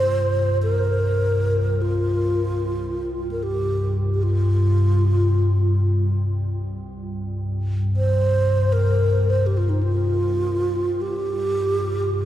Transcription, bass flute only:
Already playing: C5
0.63 A#4
1.82 F4
3.31 A#4
3.43 G4
4.14 G4
4.23 F4
7.97 C5
8.73 A#4
9.30 C5
9.46 G4
9.57 F4
9.69 D#4
9.83 F4
11.01 G4

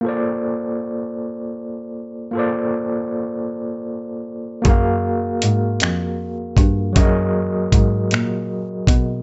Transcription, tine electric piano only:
0.01 A#3 F4 A4
0.07 C5 D5
2.31 A#3 F4 A4
2.37 C5 D5
4.62 A#3 F#4 G#4
4.68 A#4 F5
6.93 F#3 F#4 G#4
6.98 A#4 D#5

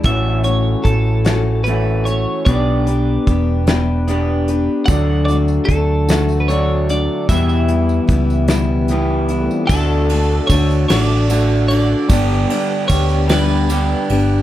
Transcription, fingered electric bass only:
0.04 A1
0.85 A1
2.47 B1
3.28 E1
4.89 D2
5.69 D2
7.29 E2
8.09 C#2
9.69 D2
10.50 D2
10.90 A1
12.10 G1
12.90 D2
14.10 G1

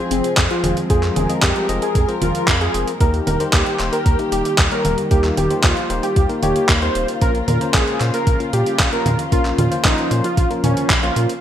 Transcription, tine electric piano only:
Already playing: C4 F4 G#4 C5
0.51 C4 F4 G#4 F5
0.64 C4 F4 G#4 C5
0.90 C4 F4 G#4 C5
1.30 C4 F4 G#4 D#5
1.69 C4 F4 G#4 D#5
2.08 C4 F4 G#4 C5
2.61 C4 F4 G#4 F5
2.74 C4 F4 G#4 C5
3.01 A#3 D#4 G4 A#4
3.40 A#3 D#4 G4 C5
3.80 A#3 D#4 G4 C5
4.19 A#3 D#4 G4 A#4
4.72 A#3 D#4 G4 C#5
4.85 A#3 D#4 G4 A#4
5.11 A#3 D#4 G4 A#4
5.50 A#3 D#4 G4 C5
5.90 A#3 D#4 G4 C5
6.29 A#3 D#4 G4 A#4
6.43 A#3 D#4 G4 C#5
6.82 A#3 D#4 G4 A#4
7.22 A#3 C#4 F4 A#4
7.61 A#3 C#4 F4 C5
8.01 A#3 C#4 F4 C5
8.40 A#3 C#4 F4 A#4
8.93 A#3 C#4 F4 C#5
9.06 A#3 C#4 F4 A#4
9.32 A#3 C#4 F4 A#4
9.71 A#3 C#4 F4 C5
10.11 A#3 C#4 F4 C5
10.50 A#3 C#4 F4 A#4
11.03 A#3 C#4 F4 C#5
11.16 A#3 C#4 F4 A#4

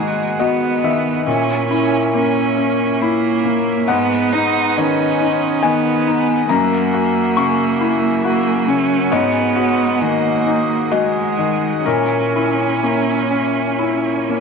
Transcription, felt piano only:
Already playing: G#2 D#3 D#4 F#4 B4
0.39 F#4 D#5
0.83 D#3 E5
1.27 A#2
1.71 E4
2.14 A#3
2.57 C#4
3.02 E4
3.45 A#3
3.88 G#2 F#5
4.33 D#4
4.77 D#3
5.21 D#4
5.63 D#3 G#5
6.07 D#4
6.49 F#2 A#5
6.94 F#4
7.37 C#3 C#6
7.81 E4
8.25 F#4
8.68 C#3
9.12 G#2 C#5
9.56 F#4
10.01 D#3
10.47 D#4
10.91 F#4 D#5
11.39 D#3
11.86 A#2 A#4
12.36 E4
12.83 A#3
13.31 C#4
13.79 E4
14.29 A#3

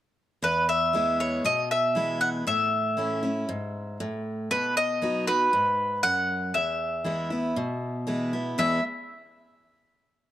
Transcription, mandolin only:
0.44 B4
0.69 E5
1.20 C#5
1.46 D#5
1.71 E5
2.21 F#5
2.47 E5
4.51 B4
4.77 D#5
5.28 B4
6.03 F#5
6.54 E5
8.59 E5

